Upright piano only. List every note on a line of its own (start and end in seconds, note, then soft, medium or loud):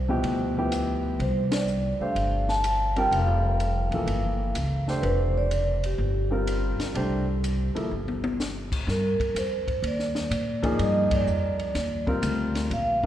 0.08 0.53 B2 medium
0.08 0.53 F3 medium
0.08 0.53 E4 medium
0.08 0.54 G4 medium
0.57 1.17 F3 medium
0.57 1.18 B3 medium
0.57 1.18 E4 medium
0.57 1.18 G4 medium
2.00 2.61 A3 medium
2.00 2.61 D4 soft
2.00 2.61 G4 soft
2.00 2.61 C5 medium
2.96 3.57 G3 medium
2.96 3.57 C4 medium
2.96 3.57 F4 medium
2.96 3.58 A#4 medium
3.92 4.53 E3 soft
3.92 4.53 F3 medium
3.92 4.53 A#3 soft
3.92 4.54 A4 medium
4.87 5.48 A3 medium
4.87 5.48 D4 medium
4.87 5.49 G4 medium
4.87 5.49 C5 medium
6.30 6.92 G3 medium
6.30 6.92 C4 medium
6.30 6.92 F4 soft
6.30 6.92 A#4 medium
6.94 7.24 A3 medium
6.94 7.24 D4 medium
6.94 7.25 G4 soft
6.94 7.25 C5 medium
7.75 7.89 F3 medium
7.75 7.89 A#3 soft
7.75 7.90 E4 soft
7.75 7.90 A4 medium
10.62 11.23 F3 medium
10.62 11.24 A#3 medium
10.62 11.24 D#4 medium
10.62 11.24 G#4 medium
12.06 12.68 G3 medium
12.06 12.68 C4 medium
12.06 12.68 F4 medium
12.06 12.68 A#4 medium